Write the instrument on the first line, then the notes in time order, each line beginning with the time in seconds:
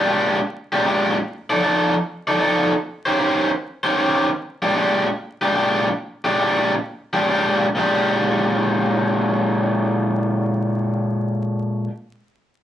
overdriven electric guitar
0.07 A#2 G#3 D4 G4
0.72 A#2 G#3 D4 G4
0.85 A#2 G#3 D4 G4
1.50 F3 D#4 A4 D5
1.63 F3 D#4 A4 D5
2.27 F3 D#4 A4 D5
2.40 F3 D#4 A4 D5
3.06 D#3 C#4 G4 C5
3.19 D#3 C#4 G4 C5
3.83 D#3 C#4 G4 C5
3.96 D#3 C#4 G4 C5
4.62 A#2 G#3 D4 G4
4.75 A#2 G#3 D4 G4
5.41 A#2 G#3 D4 G4
5.55 A#2 G#3 D4 G4
6.24 A#2 G#3 D4 G4
6.39 A#2 G#3 D4 G4
7.13 A#2 G#3 D4 G4
7.28 A#2 G#3 D4 G4
7.75 A#2 G#3 D4 G4